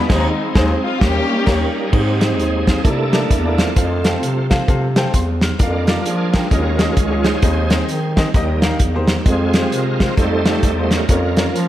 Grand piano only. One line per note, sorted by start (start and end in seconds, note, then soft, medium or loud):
0.08 0.29 D#3 medium
0.08 0.28 D#4 loud
0.08 0.29 G#4 medium
0.08 0.29 C5 medium
0.55 0.74 D#4 loud
0.55 0.75 G#4 loud
0.55 0.75 C5 loud
1.46 1.66 A#3 loud
1.46 1.66 C#4 loud
1.46 1.66 D#4 loud
1.46 1.67 G4 loud
1.46 1.67 C#5 loud
1.92 2.63 G#2 medium
1.92 2.09 C4 medium
1.92 2.09 D#4 medium
1.92 2.09 G#4 medium
1.92 2.10 D#5 medium
2.21 2.42 C4 medium
2.21 2.43 D#4 medium
2.21 2.43 G#4 medium
2.21 2.44 C5 medium
2.67 2.77 C4 medium
2.67 2.77 D#4 medium
2.67 2.77 G#4 medium
2.67 2.78 F5 medium
2.84 3.55 C3 medium
2.84 3.01 A#3 medium
2.84 3.01 E4 medium
2.84 3.02 A4 medium
2.84 3.02 D5 medium
3.12 3.27 A#3 medium
3.12 3.28 E4 medium
3.12 3.28 A4 medium
3.12 3.28 D5 medium
3.44 3.65 A#3 medium
3.44 3.65 E4 medium
3.44 3.65 A4 medium
3.44 3.66 D5 medium
3.75 3.92 C4 medium
3.75 3.92 F4 medium
3.75 3.93 A4 medium
3.75 3.93 F5 medium
4.04 4.26 C4 medium
4.04 4.26 F4 medium
4.04 4.27 A4 medium
4.04 4.27 G5 medium
4.50 4.60 C4 medium
4.50 4.60 F4 medium
4.50 4.61 A4 medium
4.50 4.61 F5 medium
4.68 4.84 C4 medium
4.68 4.84 F4 medium
4.68 4.85 A4 medium
4.68 4.85 F5 medium
4.96 5.11 C4 medium
4.96 5.11 F4 medium
4.96 5.12 A4 medium
4.96 5.12 G5 medium
5.15 5.41 C6 medium
5.43 5.86 F6 medium
5.60 5.76 D4 medium
5.60 5.76 F4 medium
5.60 5.77 A#4 medium
5.60 5.77 F5 medium
5.88 6.10 D4 medium
5.88 6.10 F4 medium
5.88 6.10 A#4 medium
5.88 6.11 D5 medium
6.33 6.44 D4 medium
6.33 6.44 F4 medium
6.33 6.44 A#4 medium
6.33 6.45 G5 medium
6.51 7.22 D#3 medium
6.51 6.67 C#4 medium
6.51 6.68 F4 medium
6.51 6.68 G#4 medium
6.51 6.69 D#5 medium
6.79 6.94 C#4 medium
6.79 6.95 F4 medium
6.79 6.95 G#4 medium
6.79 6.96 D#5 medium
7.11 7.31 C#4 medium
7.11 7.32 F4 medium
7.11 7.32 G#4 medium
7.11 7.32 D#5 medium
7.42 8.13 D#3 medium
7.42 7.59 C4 medium
7.42 7.59 D#4 medium
7.42 7.59 G#4 medium
7.42 7.60 D#5 medium
7.71 7.93 C4 medium
7.71 7.93 D#4 medium
7.71 7.93 G#4 medium
7.71 7.94 D#5 medium
8.16 8.27 C4 medium
8.16 8.27 D#4 medium
8.16 8.27 G#4 medium
8.16 8.28 D#5 medium
8.34 9.05 D#3 medium
8.34 8.51 A#3 medium
8.34 8.51 D#4 medium
8.34 8.51 G4 medium
8.34 8.52 D#5 medium
8.62 8.77 A#3 medium
8.62 8.78 D#4 medium
8.62 8.78 G4 medium
8.62 8.79 F5 medium
8.94 9.15 A#3 medium
8.94 9.15 D#4 medium
8.94 9.15 G4 medium
8.94 9.16 C5 loud
9.25 9.42 G#3 medium
9.25 9.42 C4 medium
9.25 9.43 F4 medium
9.25 9.43 C5 medium
9.54 9.76 G#3 medium
9.54 9.76 C4 medium
9.54 9.77 F4 medium
9.54 9.77 G4 medium
10.00 10.10 G#3 medium
10.00 10.10 C4 medium
10.00 10.11 F4 medium
10.00 10.11 C5 medium
10.17 10.33 A3 medium
10.17 10.34 D#4 medium
10.17 10.34 F4 medium
10.17 10.35 C5 medium
10.46 10.61 A3 medium
10.46 10.61 D#4 medium
10.46 10.62 F4 medium
10.46 10.62 G4 medium
10.77 10.98 A3 medium
10.77 10.98 D#4 medium
10.77 10.98 F4 medium
10.77 10.99 C5 medium
11.08 11.25 A#3 medium
11.08 11.25 C#4 medium
11.08 11.26 F4 medium
11.08 11.26 C#5 medium
11.37 11.59 A#3 medium
11.37 11.59 C#4 medium
11.37 11.59 F4 medium
11.37 11.60 C#5 medium